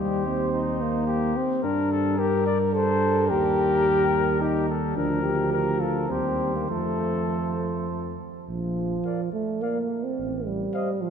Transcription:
Already playing: D#2 G3 G4 C5
0.00 G3
0.26 C4
0.53 D#4
0.81 A#3
1.07 G4
1.37 C4
1.63 G2 G3 D4 A#4
1.92 A4
2.18 G4 A#4
2.46 D5
2.74 A4 C5
3.28 D#2 G4 A#4
4.41 D#4 G4
4.69 A4
4.96 D2 F3 D4 A#4
5.23 G4
5.53 A#4
5.80 F4 A4
6.09 D#2 G3 C4 G4 C5
6.56 A#3
6.70 F2 F3 A3 A4
8.49 A#1 F3
9.05 A#4 D5 F5
9.33 A3
9.61 A#3 A#4 D5 F5
10.03 C4
10.19 A1
10.46 G3
10.74 C5 D#5 F5
11.01 F3

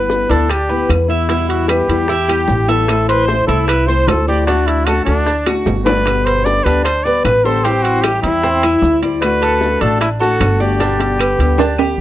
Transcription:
Already playing: G1 E4 B4
0.10 G3 B3 E4, high bongo, maracas
0.29 D2 B3 D4 E4 A4, high bongo, high timbale, maracas
0.49 G4, muted nylon-string guitar stroke, high bongo, high timbale, claves, maracas
0.69 B3 E4 B4, high bongo
0.89 E2, high bongo, low bongo, high timbale, claves, maracas
1.09 B3 E4 E5, maracas
1.28 B2 E3 G3 B3 E4, high bongo, high timbale, maracas
1.49 F#4, high bongo, high timbale
1.68 E3 G3 B3 E4 G4 B4, high bongo, high timbale, claves, maracas
1.88 E2 E3 G3 B3 E4, high bongo, high timbale, maracas
2.08 E4, muted nylon-string guitar stroke, high bongo, maracas
2.28 G3 B3 E4 G4, high bongo, high timbale, claves
2.48 A1, high bongo, low bongo, maracas
2.68 E3 G3 B3 E4 A4 E5, high timbale, maracas
2.87 E3 A3 C4 E4, high bongo, high timbale, claves, maracas
3.08 B4 C5, high bongo, high timbale, maracas
3.28 E3 A3 C4 E4 C5, high bongo, maracas
3.47 C2 A3 C4 E4 A4, high bongo, high timbale, maracas
3.68 B4, muted nylon-string guitar stroke, high bongo, high timbale, claves, maracas
3.87 A3 C4 E4 C5, high bongo, maracas
4.07 D2 A4, high bongo, low bongo, high timbale, low timbale, claves, maracas
4.27 A3 C4 E4 G4 D5, maracas
4.46 D3 A3 D4 F#4, high bongo, high timbale, maracas
4.67 E4, high bongo, high timbale
4.86 D3 A3 D4 F#4 A4, high bongo, high timbale, claves, maracas
5.05 D2 A3 D4 F#4, high bongo, high timbale, maracas
5.27 D4, muted nylon-string guitar stroke, high bongo, maracas
5.46 A3 D4 F#4, high bongo, high timbale, claves
5.66 G1, high bongo, low timbale, maracas
5.85 A3 D4 F#4 B4 D5, low bongo, high timbale, maracas
6.06 B2 D3 G3 B3 G4, high bongo, high timbale, claves, maracas
6.25 B4 C5, high bongo, high timbale
6.45 D3 G3 B3 G4 D5, high bongo, maracas
6.64 D2 D3 G3 B3 D4 G4 B4, high bongo, high timbale, maracas
6.84 C5, muted nylon-string guitar stroke, high bongo, high timbale, claves, maracas
7.04 G3 B3 G4 B4 D5, high bongo, maracas
7.24 A1 B4, high bongo, low bongo, high timbale, claves, maracas
7.44 D3 G3 B3 G4 A4 C5, maracas
7.64 E3 G3 C4 E4 G4, high bongo, high timbale, maracas
7.83 F#4, high bongo, high timbale
8.01 E3 G3 C4 G4, high bongo, high timbale, claves, maracas
8.05 E4
8.22 E2 G3 C4 E4, high bongo, high timbale, maracas
8.43 C4, muted nylon-string guitar stroke, high bongo, maracas
8.63 G3 C4 E4, high bongo, high timbale, claves, maracas
8.82 D2, high bongo, low bongo, maracas
9.02 G3 C4 E4 D5, high timbale, maracas
9.22 D3 A3 D4 F#4 B4, high bongo, high timbale, claves, maracas
9.42 A4, high bongo, high timbale, maracas
9.61 D3 A3 D4 F#4, high bongo, maracas
9.81 A1 A3 D4 F#4 A4, high bongo, high timbale, maracas
10.01 E4, muted nylon-string guitar stroke, high bongo, high timbale, claves, maracas
10.20 A3 D4 F#4 A4, high bongo, maracas
10.40 G1, high bongo, low bongo, high timbale, claves, maracas
10.60 A3 D4 F#4 G4 D5, maracas
10.80 B2 D3 G3 B3 D4 G4, high bongo, high timbale, maracas
11.00 high bongo, high timbale
11.19 D3 G3 B3 G4 B4, high timbale, claves, maracas
11.39 D2 D3 G3 B3 G4, high timbale, maracas
11.58 D4, low bongo, high timbale, maracas
11.78 G3 B3 G4, high timbale, claves

